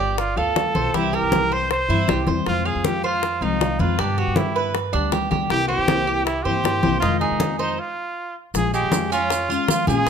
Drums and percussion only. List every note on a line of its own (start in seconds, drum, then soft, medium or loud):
0.18 high bongo medium
0.18 high conga soft
0.37 high conga soft
0.56 high bongo medium
0.56 low bongo medium
0.56 high conga medium
0.75 high conga medium
0.94 high bongo medium
0.94 high conga soft
1.13 high bongo soft
1.13 high conga soft
1.32 high bongo soft
1.32 high conga medium
1.51 high bongo soft
1.51 high conga soft
1.70 high bongo medium
1.70 high conga soft
1.89 high bongo soft
1.89 high conga soft
2.08 high bongo medium
2.08 low bongo medium
2.08 high conga medium
2.27 high conga medium
2.46 high bongo medium
2.46 high conga soft
2.66 high conga soft
2.84 high bongo medium
2.84 high conga medium
3.03 high conga soft
3.23 high bongo medium
3.23 high conga soft
3.42 high conga soft
3.61 high bongo medium
3.61 low bongo medium
3.61 high conga medium
3.79 high conga medium
3.99 high bongo medium
3.99 high conga soft
4.18 high bongo soft
4.18 high conga soft
4.36 high bongo medium
4.36 high conga medium
4.56 high bongo soft
4.56 high conga soft
4.75 high bongo medium
4.75 high conga soft
4.94 high bongo soft
4.94 high conga soft
5.12 high bongo medium
5.12 low bongo medium
5.12 high conga medium
5.32 high conga medium
5.50 high bongo medium
5.50 high conga soft
5.70 high conga soft
5.88 high bongo medium
5.88 high conga medium
6.07 high conga soft
6.26 high bongo medium
6.26 high conga soft
6.45 high conga soft
6.64 high bongo medium
6.64 low bongo medium
6.64 high conga medium
6.83 high conga medium
7.02 high bongo medium
7.02 high conga soft
7.21 high bongo soft
7.21 high conga soft
7.40 high bongo medium
7.40 high conga medium
7.59 high bongo soft
7.59 high conga soft
8.54 high bongo medium
8.54 high conga soft
8.54 maracas medium
8.73 high conga soft
8.73 maracas soft
8.92 high bongo soft
8.92 high conga medium
8.92 maracas medium
9.10 high conga soft
9.10 maracas soft
9.30 high bongo medium
9.30 high conga soft
9.30 maracas medium
9.49 high conga soft
9.49 maracas soft
9.68 high bongo medium
9.68 low bongo medium
9.68 high conga medium
9.68 maracas medium
9.87 high conga medium
9.87 maracas soft